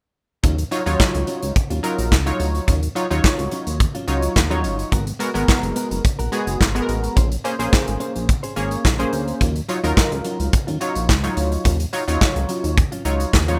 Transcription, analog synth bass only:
0.44 0.64 D#2 loud
0.87 0.96 D#2 medium
1.15 1.24 C#2 medium
1.43 1.52 C#2 medium
1.71 1.80 D#2 medium
1.99 2.13 A#1 medium
2.12 2.32 C#2 medium
2.40 2.60 D2 loud
2.68 2.88 D#2 loud
3.11 3.21 D#2 medium
3.39 3.49 C#2 medium
3.67 3.87 D#2 medium
4.08 4.29 C#2 medium
4.36 4.66 D#2 medium
4.64 4.85 G1 medium
4.92 5.13 G#1 loud
5.35 5.45 G#1 medium
5.63 5.73 F#1 medium
5.91 6.01 F#1 medium
6.19 6.29 A#1 medium
6.47 6.57 F#1 medium
6.61 6.81 G#1 medium
6.89 7.09 A1 medium
7.17 7.37 A#1 loud
7.59 7.69 A#1 medium
7.88 7.97 G#1 medium
8.16 8.36 A#1 medium
8.57 8.77 G#1 medium
8.85 9.05 A#1 medium
9.13 9.33 D2 medium
9.41 9.61 D#2 loud
9.84 9.93 D#2 loud
10.12 10.21 C#2 medium
10.40 10.49 C#2 medium
10.68 10.78 D#2 medium
10.96 11.10 A#1 medium
11.09 11.29 C#2 medium
11.37 11.58 D2 loud
11.65 11.86 D#2 loud
12.08 12.18 D#2 medium
12.36 12.46 C#2 medium
12.64 12.84 D#2 medium
13.05 13.26 C#2 medium
13.34 13.59 D#2 loud

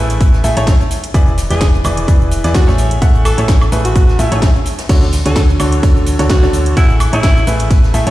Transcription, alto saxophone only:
1.51 1.68 G#4 medium
2.55 2.73 F#4 loud
3.25 3.44 A4 medium
3.85 4.50 F#4 medium
5.26 5.43 A4 medium
6.30 6.48 F#4 loud
6.77 6.95 E4 medium
7.13 7.47 E4 loud

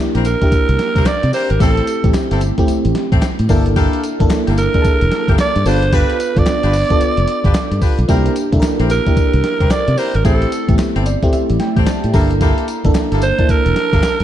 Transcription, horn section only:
0.15 0.26 C4 medium
0.15 0.26 E4 medium
0.15 0.26 G4 medium
0.15 0.26 A#4 medium
0.96 1.07 C4 medium
0.96 1.07 E4 medium
0.96 1.07 G4 medium
0.96 1.07 A#4 medium
1.33 1.50 C4 medium
1.33 1.50 E4 medium
1.33 1.50 G4 medium
1.33 1.51 A#4 medium
1.60 1.85 C4 loud
1.60 1.85 E4 medium
1.60 1.86 G4 medium
1.60 1.86 A4 loud
2.31 2.42 C4 medium
2.31 2.42 E4 medium
2.31 2.42 G4 medium
2.31 2.42 A4 medium
3.12 3.23 C4 medium
3.12 3.23 E4 medium
3.12 3.23 G4 medium
3.12 3.24 A4 medium
3.49 3.67 A#3 medium
3.49 3.67 E4 medium
3.49 3.67 G4 medium
3.49 3.67 A4 medium
3.76 4.02 A#3 medium
3.76 4.02 E4 medium
3.76 4.02 G4 medium
3.76 4.02 A4 loud
4.47 4.58 A#3 medium
4.47 4.58 E4 medium
4.47 4.58 G4 medium
4.47 4.59 A4 medium
5.28 5.40 A#3 medium
5.28 5.40 E4 medium
5.28 5.40 G4 medium
5.28 5.40 A4 medium
5.66 5.83 D4 medium
5.66 5.83 F4 medium
5.66 5.83 G4 medium
5.66 5.83 B4 medium
5.92 6.18 D4 loud
5.92 6.18 F4 loud
5.92 6.18 G4 medium
5.92 6.18 B4 loud
6.63 6.74 D4 medium
6.63 6.74 F4 medium
6.63 6.75 G4 medium
6.63 6.75 B4 medium
7.44 7.56 D4 medium
7.44 7.56 F4 medium
7.44 7.56 G4 medium
7.44 7.56 B4 medium
7.81 7.99 D4 medium
7.81 7.99 F4 medium
7.81 7.99 G4 medium
7.81 7.99 B4 medium
8.08 8.34 C4 loud
8.08 8.34 E4 medium
8.08 8.34 G4 medium
8.08 8.34 A#4 loud
8.79 8.91 C4 medium
8.79 8.91 E4 medium
8.79 8.91 G4 medium
8.79 8.91 A#4 medium
9.60 9.72 C4 medium
9.60 9.72 E4 medium
9.60 9.72 G4 medium
9.60 9.72 A#4 medium
9.97 10.15 C4 medium
9.97 10.15 E4 medium
9.97 10.15 G4 medium
9.97 10.15 A#4 loud
10.25 10.50 C4 loud
10.25 10.50 E4 medium
10.25 10.50 G4 medium
10.25 10.50 A4 loud
10.95 11.07 C4 medium
10.95 11.07 E4 medium
10.95 11.07 G4 medium
10.95 11.07 A4 medium
11.77 11.88 C4 medium
11.77 11.88 E4 medium
11.77 11.88 G4 medium
11.77 11.88 A4 medium
12.14 12.31 A#3 medium
12.14 12.31 E4 medium
12.14 12.31 G4 medium
12.14 12.32 A4 medium
12.41 12.66 A#3 loud
12.41 12.66 E4 medium
12.41 12.66 G4 medium
12.41 12.67 A4 loud
13.12 13.23 A#3 medium
13.12 13.23 E4 medium
13.12 13.23 G4 medium
13.12 13.23 A4 medium
13.93 14.04 A#3 medium
13.93 14.04 E4 medium
13.93 14.04 G4 medium
13.93 14.04 A4 medium

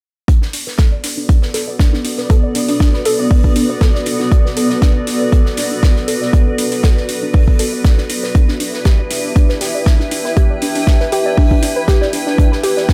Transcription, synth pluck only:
0.28 0.35 D4 medium
0.42 0.47 D4 medium
0.53 0.57 D4 medium
0.67 0.70 B4 medium
0.79 0.88 A4 loud
0.92 1.01 D5 medium
1.04 1.10 D4 medium
1.17 1.23 D4 medium
1.29 1.33 D4 medium
1.42 1.46 B4 medium
1.54 1.64 A4 loud
1.68 1.76 D5 medium
1.79 1.86 D4 medium
1.93 1.99 D4 medium
2.05 2.09 D4 medium
2.18 2.22 B4 medium
2.30 2.40 A4 loud
2.43 2.52 D5 medium
2.55 2.62 D4 medium
2.69 2.74 D4 medium
2.80 2.84 D4 medium
2.94 2.97 B4 medium
3.06 3.15 A4 loud
3.19 3.28 D5 medium
3.31 3.37 D4 medium
3.44 3.50 D4 medium
3.56 3.60 D4 medium
3.69 3.73 B4 medium
3.81 3.91 A4 loud
3.95 4.03 D5 medium
4.06 4.13 D4 medium
4.20 4.26 D4 medium
4.32 4.36 D4 medium
4.45 4.48 B4 medium
4.57 4.67 A4 medium
4.70 4.79 D5 medium
4.82 4.89 D4 medium
4.95 5.01 D4 medium
5.07 5.11 D4 medium
5.21 5.24 B4 medium
5.32 5.42 A4 medium
5.46 5.54 D5 medium
5.58 5.64 D4 medium
5.71 5.77 D4 medium
5.83 5.87 D4 medium
5.96 6.00 B4 medium
6.08 6.18 A4 loud
6.21 6.30 D5 medium
6.33 6.40 D4 medium
6.47 6.52 D4 medium
6.58 6.62 D4 medium
6.72 6.75 B4 medium
6.84 6.93 A4 loud
6.97 7.06 D5 medium
7.09 7.15 D4 medium
7.22 7.28 D4 medium
7.34 7.38 D4 medium
7.48 7.51 B4 medium
7.59 7.69 A4 loud
7.73 7.81 D5 medium
7.84 7.91 D4 medium
7.98 8.04 D4 medium
8.10 8.14 D4 medium
8.23 8.27 B4 medium
8.35 8.41 D4 medium
8.48 8.54 D4 medium
8.60 8.64 D4 medium
8.74 8.77 B4 medium
8.85 8.95 G4 loud
8.99 9.07 D5 medium
9.11 9.17 D4 medium
9.24 9.30 D4 medium
9.36 9.40 D4 medium
9.49 9.53 B4 medium
9.61 9.71 G4 medium
9.74 9.83 D5 medium
9.86 9.93 D4 medium
10.00 10.05 D4 medium
10.12 10.15 D4 medium
10.25 10.28 B4 medium
10.37 10.46 G4 loud
10.50 10.59 D5 medium
10.62 10.68 D4 medium
10.75 10.81 D4 medium
10.87 10.91 D4 medium
11.01 11.04 B4 medium
11.12 11.22 G4 loud
11.26 11.34 D5 medium
11.37 11.44 D4 medium
11.51 11.57 D4 medium
11.63 11.67 D4 medium
11.76 11.80 B4 medium
11.88 11.98 G4 loud
12.01 12.10 D5 medium
12.13 12.20 D4 medium
12.27 12.32 D4 medium
12.38 12.42 D4 medium
12.52 12.55 B4 medium
12.63 12.73 G4 loud
12.77 12.85 D5 medium
12.89 12.94 D4 medium

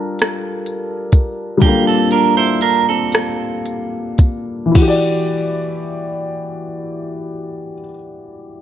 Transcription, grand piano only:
0.00 1.55 G3 medium
0.00 1.57 D4 medium
0.00 1.58 F4 medium
0.00 1.59 A4 medium
0.00 1.61 A#4 medium
1.57 4.69 G3 medium
1.57 4.71 D4 medium
1.63 4.72 F4 soft
1.63 4.73 A4 soft
1.68 4.75 A#3 medium
4.66 7.73 E3 medium
4.71 7.78 E4 medium
4.77 7.84 F#4 medium
4.82 7.89 G4 medium
4.88 7.95 D5 medium

